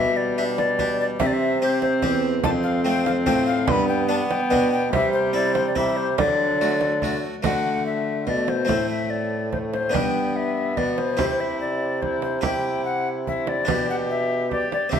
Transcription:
Already playing: B2 G3 E5
0.17 D5
0.37 D4 G4 E5
0.58 D5, frame drum
0.79 D4 G4, frame drum
1.00 D5
1.19 C3 C4 E5, frame drum
1.27 D5
1.33 E5
1.62 C4 G4 C5
1.82 C5, frame drum
2.02 E2 C4 G4, frame drum
2.44 F2 C4 A5, frame drum
2.63 F5
2.84 A3 C4 F4 G5
3.06 F5, frame drum
3.26 A2 A3 C4 F4 G5, frame drum
3.46 F5
3.68 G2 B3 B5 C6, frame drum
3.88 G5
4.09 B3 D4 A5
4.30 G5, frame drum
4.50 B2 B3 D4, frame drum
4.72 G5
4.92 C3 G3 E5, frame drum
5.13 C5
5.33 C4 E4 D5
5.55 C5, frame drum
5.67 D5
5.76 G3 C4 E4 E5, frame drum
5.97 C5
6.18 D3 F#3 D5, frame drum
6.61 A3 F#4
6.81 frame drum
7.02 A3 F#4, frame drum
7.43 D3 A3 F#4 F#5, frame drum
7.86 E5
8.27 B2 A3 D5, frame drum
8.48 C5, frame drum
8.65 A2 A3 C4 E4, frame drum
8.69 A2
8.90 E5
9.10 D5
9.52 A3 C5, frame drum
9.73 C5, frame drum
9.90 G2 B3 D4 G4
9.94 G2 B3 G5, frame drum
10.36 E5
10.77 B2 B3 D5, frame drum
10.98 C5, frame drum
11.17 C3 E4 G4, frame drum
11.40 E5
11.61 D5
12.02 E4 C5, frame drum
12.22 C5, frame drum
12.41 E4 G4 G5, frame drum
12.85 F#5
13.27 E4 E5, frame drum
13.47 D5, frame drum
13.65 B2 D4 G4, frame drum
13.90 F#5
14.11 E5
14.51 G4 D5, frame drum
14.72 D5, frame drum
14.89 C3 C4 G4 E5, frame drum

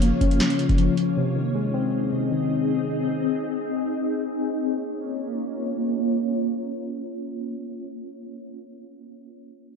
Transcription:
Already playing: C#3 F3 A#3 C#4 F4 C#5
0.02 A#3, closed hi-hat
0.21 C#4, kick, closed hi-hat
0.31 closed hi-hat
0.40 snare, closed hi-hat
0.50 closed hi-hat
0.59 C#3, closed hi-hat
0.69 kick, closed hi-hat
0.78 F3, closed hi-hat
0.97 closed hi-hat
1.16 C3 C4 D#4 G#4 D#5
1.36 D#3
1.55 G#3
1.74 C4
2.12 C3
2.31 D#3
4.22 A#3 C#4 F4 C#5

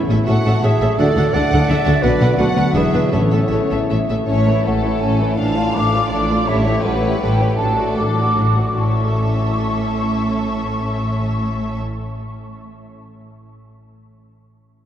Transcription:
Already playing: A2 E4 E5
0.01 E3
0.10 A1 A2 C#4 A4 E5
0.19 E4
0.26 A1 A2 C#4 F#4 A4 E5 F#5
0.37 C#5
0.45 A1 A2 C#4 A4 E5
0.55 A5
0.63 A1 A2 C#4 G#4 A4 E5
0.73 A4
0.81 A1 A2 C#4 E4 A4 E5
0.90 C#4
0.97 D2 D3 D4 F#4 A4 D5 F#5
1.07 A3
1.16 D2 D3 D4 A4 F#5
1.25 F#4
1.34 D2 D3 D4 A4 D5 F#5
1.43 D5
1.51 D2 D3 D4 A4 F#5
1.60 A5
1.68 D2 D3 D4 A4 E5 F#5
1.77 A4
1.86 D2 D3 D4 F#4 A4 F#5
1.94 D4
2.02 B1 B2 D4 F#4 B4 D5 F#5
2.13 F#3
2.20 B1 B2 D4 B4 F#5
2.30 F#4
2.38 D2 D3 B3 D4 F#4 B4 F#5
2.48 B3
2.56 D2 D4 B4 F#5
2.65 F#4
2.74 E1 E2 E3 D4 E4 G#4 B4 E5
2.83 B3
2.93 E1 E2 D4 B4 E5
3.03 E4
3.12 A1 A2 C#4 E4 A4 C#5 E5
3.23 E3
3.31 A1 A2 C#4 A4 E5
3.42 E4
3.50 A1 A2 C#4 A4 E5
3.61 C#5
3.70 A1 A2 C#4 A4 E5
3.80 A5
3.89 A1 A2 C#4 A4 E5
3.99 A4
4.09 A1 A2 C#4 E4 A4 E5
4.18 C#4
4.27 A1 A2 A3 C#4 A4 C#5 E5
4.47 E3 A3 E4 A4 C#5
4.64 A1 A2 A3 C#4 A4 F#5
4.83 E3 A3 E4 C#5
5.01 A1 A2 A3 C#4 A4 G#5
5.19 E3 A3 C#4 E4 C#5
5.37 A1 A2 F3 D4 A4 F5 A5
5.56 A3 F4 A4 D5
5.75 A1 A2 F3 D4 A4 D6
5.93 A3 F4 D5
6.12 A1 A2 F3 D4 A4 D5
6.30 A3 D4 F4 D5
6.47 A1 A2 G3 C#4 E4 A4 C#5 E5
6.65 A3 E4 G4 A4 C#5
6.83 A1 A2 G3 C#4 E4 A4 B4 F#5
7.02 A3 E4 G4 C#5
7.19 A1 A2 G3 C#4 E4 A4 G5
7.39 A3 C#4 E4 G4 C#5
7.57 A1 A2 F#3 D4 A4 A5
7.77 A3 F#4 A4 D5
7.96 A1 A2 F#3 D4 A4 D6
8.17 A3 F#4 D5
8.36 A1 A2 F#3 D4 F#4 A4
8.57 A3 D4 F#4 D5
8.76 A1 A2 C#4 A4 E5 C#6
8.84 A3
8.90 C#4
8.97 E4
9.05 A4
9.12 E5

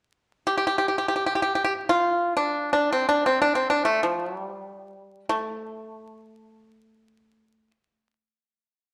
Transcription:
0.47 G4
0.58 G4
0.67 G4
0.78 G4
0.88 G4
0.98 G4
1.08 G4
1.16 G4
1.26 G4
1.35 G4
1.42 G4
1.55 G4
1.64 G4
1.89 F4
2.37 D4
2.73 D4
2.92 C4
3.09 D4
3.26 C4
3.42 D4
3.55 C4
3.70 D4
3.85 A3
4.03 F3
4.25 F#3
4.39 G3
5.29 A3

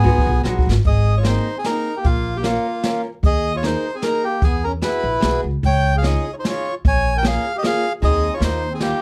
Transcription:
Already playing: B3 G#4
0.03 F#3 G#3 B3 D#4 F#4, kick
0.18 kick
0.27 B1
0.43 A#1 F#3 G#3 B3 D#4 F#4, snare
0.59 kick
0.67 G#1
0.71 snare
0.84 G#1 G#4 D#5, kick, closed hi-hat
1.17 F4 C#5
1.23 A#3 C4 D#4 G#4 C5, snare, closed hi-hat
1.28 D#4
1.57 C4 G#4
1.64 A#3 C4 D#4 G#4 A#4, snare, closed hi-hat
1.97 A#3 G4
2.04 A#1 A#3 F4, kick, closed hi-hat
2.37 A#3 G4
2.43 A#3 C#4 F4 A#4, snare, closed hi-hat
2.83 A#3 C#4 F4 A#4, snare, closed hi-hat
3.23 D#2 G#4 D#5, kick, closed hi-hat
3.55 F4 C#5
3.63 A#3 D#4 G#4 A#4 C5, snare, closed hi-hat
3.95 C4 G#4
4.02 A#3 D#4 G#4 A#4, snare, closed hi-hat
4.24 A#3 G4
4.42 E2 B3 G#4, kick, closed hi-hat
4.64 C#4 A#4
4.82 B3 E4 F#4 G#4 B4, snare, closed hi-hat
5.03 A#1
5.20 B1 B3 E4 F#4 G#4, snare, closed hi-hat
5.44 C#2
5.63 C#2 C#5 G5, kick, closed hi-hat
5.97 G#4 F5
6.02 C#4 D#4 F4 G#4 D#5, snare, closed hi-hat
6.33 F4 C#5
6.38 D#4 C5
6.44 C#4 D#4 F4 G#4, snare, closed hi-hat
6.49 C#5
6.85 A#1 C#5 G#5, kick, closed hi-hat
7.17 A#4 G5
7.23 A#3 C#4 F4 G#4, snare, closed hi-hat
7.28 F5
7.56 G4 D#5
7.63 A#3 C#4 F4 G#4 F5, snare, closed hi-hat
8.02 D#2 G#3 C4 D#4 G#4 D#5, kick, closed hi-hat
8.34 F4 C#5
8.39 D#2 G3 A#3 D#4 F4, snare, closed hi-hat
8.44 C5
8.71 C4 G#4
8.80 G3 A#3 D#4 F4 G4, snare, closed hi-hat

